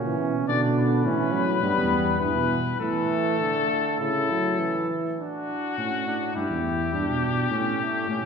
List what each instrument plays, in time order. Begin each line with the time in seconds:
Already playing: tuba A#2, flugelhorn C#4
0.05 euphonium E3
0.20 tuba B2
0.48 tuba B2, euphonium D3, flugelhorn D4, trumpet D5
0.77 trumpet B4
1.05 tuba A2, euphonium E3, flugelhorn C#4
1.33 euphonium F#3
1.62 tuba G2, euphonium G3, flugelhorn B3
1.76 tuba E2
2.20 tuba G2, euphonium E3, trumpet B4
2.35 tuba B2
2.80 tuba A2, euphonium E3, flugelhorn A3, trumpet A4
3.40 euphonium D3
4.00 tuba A2, euphonium C#3, flugelhorn E4, trumpet A4
4.31 euphonium F#3
4.60 euphonium E3
5.19 flugelhorn D4, trumpet F#4
5.78 tuba A2, flugelhorn C#4
6.07 flugelhorn D4
6.35 tuba G2, flugelhorn E4, trumpet G4
6.49 tuba E2
6.93 tuba G2, flugelhorn D4
7.08 tuba B2
7.51 tuba A2, flugelhorn C#4
7.82 flugelhorn A3
8.08 tuba A2, flugelhorn C#4